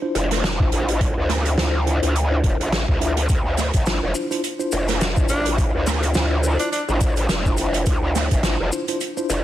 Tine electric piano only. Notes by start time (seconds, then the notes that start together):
0.02 D4 E4 F4 C5
0.60 D4 E4 F4 C5
1.58 D4 E4 F4 C5
1.86 D4 E4 F4 C5
2.02 D4 E4 F4 C5
2.31 D4 E4 F4 C5
3.00 D4 E4 F4 E5
3.86 D4 E4 F4 C5
4.15 D4 E4 F4 C5
4.31 D4 E4 F4 C5
4.59 D4 E4 F4 C5
5.16 D4 E4 F4 C5
6.15 D4 E4 F4 C5
6.44 D4 E4 F4 C5
6.60 D4 E4 F4 C5
6.88 D4 E4 F4 C5
7.46 D4 E4 F4 C5
8.44 D4 E4 F4 C5
8.73 D4 E4 F4 C5
8.89 D4 E4 F4 C5
9.17 D4 E4 F4 C5